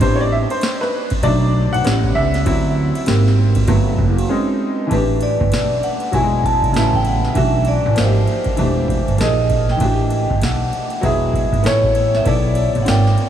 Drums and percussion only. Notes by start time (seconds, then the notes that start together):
0.01 kick, ride
0.50 ride
0.61 snare, hi-hat pedal, ride
0.83 snare
1.10 kick, ride
1.23 kick, ride
1.74 ride
1.85 snare, hi-hat pedal, ride
2.04 kick
2.34 snare, ride
2.46 kick, ride
2.95 ride
3.06 snare, hi-hat pedal, ride
3.28 snare
3.55 kick, ride
3.68 kick, ride
3.99 kick
4.18 ride
4.91 kick, ride
5.21 ride
5.41 kick
5.52 snare, hi-hat pedal, ride
5.83 ride
6.00 ride
6.13 kick, ride
6.44 kick, ride
6.63 kick, ride
6.74 snare, hi-hat pedal, ride
6.94 kick
7.05 ride
7.25 snare
7.35 kick, ride
7.65 ride
7.96 snare, hi-hat pedal, ride
8.27 ride
8.44 kick, ride
8.57 ride
8.88 kick, ride
9.08 ride
9.18 snare, hi-hat pedal, ride
9.50 kick, ride
9.70 snare
9.80 kick, ride
10.10 ride
10.30 kick
10.41 snare, hi-hat pedal, ride
10.73 ride
10.90 ride
11.03 kick, ride
11.34 kick, ride
11.52 kick, ride
11.64 snare, hi-hat pedal, ride
11.84 kick
11.95 ride
12.15 snare
12.26 kick, ride
12.55 ride
12.75 ride
12.86 snare, hi-hat pedal, ride
13.07 snare
13.18 ride